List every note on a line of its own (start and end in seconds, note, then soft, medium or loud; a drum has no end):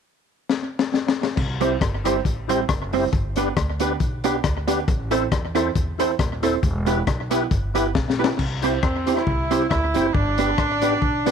0.50 snare medium
0.79 snare medium
0.94 snare medium
1.08 snare medium
1.23 snare loud
1.37 1.75 C2 loud
1.37 kick loud
1.37 crash medium
1.60 1.75 G3 medium
1.60 1.75 C4 medium
1.60 1.73 E4 medium
1.60 1.75 E4 medium
1.60 1.73 G4 medium
1.60 1.73 C5 loud
1.60 1.76 C5 medium
1.60 closed hi-hat medium
1.81 2.18 G1 medium
1.81 kick loud
1.81 cross-stick loud
1.81 closed hi-hat medium
2.04 2.19 G3 medium
2.04 2.19 C4 medium
2.04 2.17 E4 medium
2.04 2.19 E4 medium
2.04 2.17 G4 medium
2.04 2.17 C5 loud
2.04 2.20 C5 medium
2.04 cross-stick medium
2.04 closed hi-hat loud
2.25 2.62 A1 medium
2.25 kick medium
2.25 closed hi-hat medium
2.48 2.63 G3 medium
2.48 2.63 C4 medium
2.48 2.60 E4 medium
2.48 2.63 E4 medium
2.48 2.61 G4 medium
2.48 2.61 C5 loud
2.48 2.64 C5 medium
2.48 closed hi-hat medium
2.69 3.06 F#1 medium
2.69 kick loud
2.69 cross-stick loud
2.69 closed hi-hat medium
2.92 3.07 G3 medium
2.92 3.07 C4 medium
2.92 3.05 E4 loud
2.92 3.07 E4 medium
2.92 3.05 G4 medium
2.92 3.05 C5 loud
2.92 3.07 C5 medium
2.92 open hi-hat medium
3.12 3.50 G1 loud
3.12 kick loud
3.12 closed hi-hat medium
3.36 3.51 B3 medium
3.36 3.48 D4 medium
3.36 3.51 D4 medium
3.36 3.49 G4 medium
3.36 3.51 G4 medium
3.36 3.49 B4 loud
3.36 3.51 B4 medium
3.36 closed hi-hat medium
3.57 3.94 D2 loud
3.57 kick loud
3.57 cross-stick loud
3.57 closed hi-hat medium
3.80 3.94 B3 medium
3.80 3.92 D4 medium
3.80 3.95 D4 medium
3.80 3.93 G4 medium
3.80 3.95 G4 medium
3.80 3.93 B4 loud
3.80 3.95 B4 loud
3.80 closed hi-hat loud
4.00 4.38 B1 medium
4.00 kick loud
4.00 closed hi-hat medium
4.24 4.38 B3 medium
4.24 4.36 D4 medium
4.24 4.38 D4 medium
4.24 4.37 G4 medium
4.24 4.39 G4 loud
4.24 4.37 B4 loud
4.24 4.39 B4 loud
4.24 closed hi-hat medium
4.44 4.81 D2 medium
4.44 kick loud
4.44 cross-stick loud
4.44 closed hi-hat medium
4.67 4.82 B3 medium
4.67 4.80 D4 medium
4.67 4.82 D4 medium
4.67 4.80 G4 medium
4.67 4.82 G4 medium
4.67 4.80 B4 loud
4.67 4.82 B4 medium
4.67 closed hi-hat loud
4.88 5.25 A1 loud
4.88 kick loud
4.88 closed hi-hat medium
5.11 5.26 C4 medium
5.11 5.23 E4 medium
5.11 5.26 E4 medium
5.11 5.24 A4 medium
5.11 5.26 A4 medium
5.11 5.24 C5 loud
5.11 5.26 C5 medium
5.11 closed hi-hat medium
5.32 5.69 E2 loud
5.32 kick loud
5.32 cross-stick loud
5.32 closed hi-hat medium
5.55 5.69 C4 medium
5.55 5.67 E4 medium
5.55 5.70 E4 medium
5.55 5.68 A4 medium
5.55 5.70 A4 loud
5.55 5.68 C5 loud
5.55 5.70 C5 medium
5.55 cross-stick medium
5.55 closed hi-hat loud
5.75 6.13 E2 loud
5.75 kick loud
5.75 closed hi-hat medium
5.98 6.14 C4 medium
5.98 6.11 E4 loud
5.98 6.14 E4 loud
5.98 6.11 A4 medium
5.98 6.14 A4 medium
5.98 6.12 C5 medium
5.98 6.14 C5 medium
5.98 closed hi-hat medium
6.19 6.57 D#1 loud
6.19 kick loud
6.19 cross-stick loud
6.19 closed hi-hat medium
6.42 6.57 C4 medium
6.42 6.55 E4 medium
6.42 6.58 E4 medium
6.42 6.55 A4 medium
6.42 6.58 A4 medium
6.42 6.55 C5 loud
6.42 6.58 C5 medium
6.42 closed hi-hat loud
6.63 7.00 E1 loud
6.63 kick loud
6.63 closed hi-hat medium
6.86 7.01 B3 medium
6.86 6.99 E4 medium
6.86 7.01 E4 medium
6.86 6.99 G4 medium
6.86 7.02 G4 medium
6.86 6.99 B4 loud
6.86 7.02 B4 medium
6.86 closed hi-hat medium
7.07 7.45 B1 loud
7.07 kick loud
7.07 cross-stick loud
7.07 closed hi-hat medium
7.30 7.45 B3 medium
7.30 7.43 E4 medium
7.30 7.45 E4 medium
7.30 7.43 G4 medium
7.30 7.46 G4 medium
7.30 7.43 B4 loud
7.30 7.46 B4 loud
7.30 closed hi-hat medium
7.51 7.96 G1 loud
7.51 kick loud
7.51 closed hi-hat medium
7.74 7.89 B3 medium
7.74 7.87 E4 medium
7.74 7.89 E4 medium
7.74 7.87 G4 medium
7.74 7.89 G4 medium
7.74 7.87 B4 loud
7.74 7.90 B4 loud
7.74 closed hi-hat medium
7.95 8.32 B1 medium
7.95 kick loud
7.95 snare medium
8.10 snare medium
8.18 8.33 B3 medium
8.18 8.31 E4 medium
8.18 8.33 E4 medium
8.18 8.31 G4 medium
8.18 8.34 G4 medium
8.18 8.31 B4 loud
8.18 8.34 B4 medium
8.24 snare loud
8.39 8.76 C2 loud
8.39 kick loud
8.39 crash medium
8.62 8.77 C4 medium
8.62 8.74 E4 medium
8.62 8.78 E4 medium
8.62 8.75 G4 medium
8.62 8.78 G4 medium
8.62 8.75 C5 loud
8.62 8.78 C5 medium
8.62 closed hi-hat medium
8.82 9.20 E2 medium
8.82 9.14 C4 medium
8.82 8.88 G4 soft
8.82 8.88 C5 soft
8.82 kick loud
8.82 cross-stick loud
9.06 9.21 C4 medium
9.06 9.18 E4 medium
9.06 9.21 E4 medium
9.06 9.19 G4 medium
9.06 9.22 G4 medium
9.06 9.19 C5 loud
9.06 9.22 C5 medium
9.06 closed hi-hat loud
9.15 9.69 E4 medium
9.15 cross-stick medium
9.27 9.64 C2 medium
9.27 kick loud
9.51 9.65 C4 medium
9.51 9.63 E4 medium
9.51 9.65 E4 medium
9.51 9.63 G4 medium
9.51 9.65 G4 medium
9.51 9.63 C5 loud
9.51 9.65 C5 medium
9.51 closed hi-hat medium
9.70 9.91 D2 medium
9.70 10.11 E4 medium
9.70 kick loud
9.70 cross-stick loud
9.94 10.12 F#1 medium
9.94 10.09 C4 medium
9.94 10.06 E4 medium
9.94 10.09 E4 medium
9.94 10.07 G4 medium
9.94 10.09 G4 medium
9.94 10.07 C5 loud
9.94 10.10 C5 medium
9.94 closed hi-hat medium
10.14 10.52 G1 loud
10.14 11.31 D4 loud
10.14 kick loud
10.38 10.52 B3 medium
10.38 10.50 D4 medium
10.38 10.53 D4 medium
10.38 10.51 G4 medium
10.38 10.53 G4 loud
10.38 10.51 B4 loud
10.38 10.53 B4 loud
10.38 closed hi-hat medium
10.58 10.96 A1 loud
10.58 10.63 G4 soft
10.58 10.63 B4 soft
10.58 kick loud
10.58 cross-stick loud
10.81 10.96 B3 medium
10.81 10.94 D4 medium
10.81 10.97 D4 medium
10.81 10.94 G4 medium
10.81 10.97 G4 medium
10.81 10.94 B4 loud
10.81 10.97 B4 medium
10.81 closed hi-hat medium
11.02 11.31 B1 medium
11.02 kick loud
11.26 11.31 B3 medium
11.26 11.31 D4 loud
11.26 11.31 G4 medium
11.26 11.31 B4 medium
11.26 closed hi-hat medium